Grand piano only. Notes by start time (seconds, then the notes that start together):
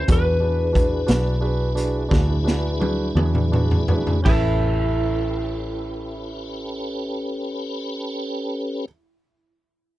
0.08 D4 F#4 G#4 B4
0.40 D4 F#4 G#4 B4
0.73 D4 F#4 G#4 B4
1.06 D4 F#4 G#4 B4
1.41 D4 F#4 G#4 B4
1.75 D4 F#4 G#4 B4
2.09 D4 F#4 G#4 B4
2.44 D4 F#4 G#4 B4
2.80 D4 F#4 G#4 B4
3.15 D4 F#4 G#4 B4
3.52 D4 F#4 G#4 B4
3.88 D4 F#4 G#4 B4
4.22 C#4 E4 G4
4.28 B4